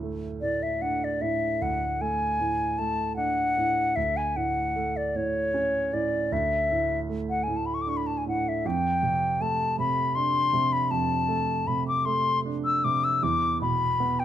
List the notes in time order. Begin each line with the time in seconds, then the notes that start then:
Already playing: D2 A2
0.03 A3
0.41 A2 D5
0.63 E5
0.82 D4 F#5
1.04 D5
1.21 A2 E5
1.61 D2 F#5
2.01 A3 G#5
2.40 A2
2.78 A3 A5
3.16 D4 F#5
3.57 A2
3.96 D2 E5
4.17 G#5
4.36 A2 F#5
4.76 A3
4.97 D5
5.15 A2 C#5
5.54 C#4
5.93 A2 D5
6.32 D2 E5
6.71 A2
7.10 A3
7.30 F#5
7.43 G#5
7.48 A2
7.56 A5
7.66 B5
7.74 C#6
7.82 D6
7.87 D4 C#6
7.97 B5
8.07 A5
8.18 G#5
8.26 A2 F#5
8.49 E5
8.65 F2 G5
9.03 C3
9.41 A3 A5
9.79 C3 B5
10.15 D4 C6
10.53 C3
10.73 B5
10.91 F2 A5
11.28 A3
11.67 C3 B5
11.88 D6
12.05 A3 C6
12.46 D4
12.65 E6
12.84 C3 D6
13.04 E6
13.23 E2 D6
13.62 B2 B5
14.00 B3
14.20 G5